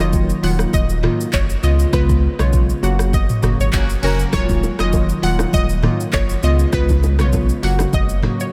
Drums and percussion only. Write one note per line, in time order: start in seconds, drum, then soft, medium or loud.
0.13 kick medium
0.13 shaker medium
0.29 shaker soft
0.44 open hi-hat medium
0.59 cross-stick loud
0.59 shaker medium
0.73 kick loud
0.73 shaker medium
0.89 shaker medium
1.03 cross-stick loud
1.03 mid tom loud
1.21 shaker medium
1.33 kick medium
1.33 clap medium
1.33 shaker medium
1.50 shaker medium
1.63 shaker medium
1.79 shaker medium
1.93 kick loud
1.93 cross-stick loud
1.93 shaker medium
2.09 kick medium
2.09 shaker medium
2.39 cross-stick loud
2.39 shaker medium
2.53 kick medium
2.53 shaker medium
2.69 shaker soft
2.83 shaker medium
2.99 cross-stick loud
2.99 shaker medium
3.13 kick loud
3.13 shaker medium
3.29 mid tom medium
3.29 shaker medium
3.43 cross-stick loud
3.43 mid tom loud
3.43 shaker medium
3.60 shaker medium
3.73 kick medium
3.73 clap medium
3.73 shaker medium
3.89 shaker medium
4.03 open hi-hat medium
4.19 shaker medium
4.33 kick loud
4.33 cross-stick loud
4.33 low conga medium
4.33 shaker medium
4.49 kick medium
4.49 low bongo medium
4.49 shaker medium
4.63 high bongo medium
4.63 low bongo medium
4.63 low conga medium
4.63 shaker medium
4.79 cross-stick loud
4.79 shaker soft
4.93 kick loud
4.93 high bongo medium
4.93 shaker medium
5.09 shaker medium
5.23 open hi-hat medium
5.39 cross-stick loud
5.39 high bongo medium
5.39 low bongo loud
5.39 shaker medium
5.53 kick loud
5.53 low conga medium
5.53 shaker medium
5.69 shaker medium
5.83 cross-stick loud
5.83 mid tom loud
5.83 low bongo medium
6.00 shaker medium
6.13 kick medium
6.13 clap medium
6.13 high bongo medium
6.13 shaker medium
6.29 shaker medium
6.43 shaker medium
6.59 shaker medium
6.73 kick loud
6.73 cross-stick loud
6.73 low conga medium
6.73 shaker medium
6.89 kick loud
6.89 low bongo medium
6.89 shaker medium
7.03 high bongo medium
7.03 low bongo medium
7.03 low conga medium
7.03 shaker medium
7.19 cross-stick loud
7.19 shaker soft
7.33 kick medium
7.33 high bongo medium
7.33 shaker medium
7.49 shaker soft
7.63 open hi-hat medium
7.79 cross-stick loud
7.79 high bongo medium
7.79 low bongo medium
7.79 shaker medium
7.93 kick loud
7.93 low conga medium
7.93 shaker medium
8.09 shaker medium
8.22 cross-stick medium
8.22 mid tom loud
8.22 low bongo medium
8.40 shaker medium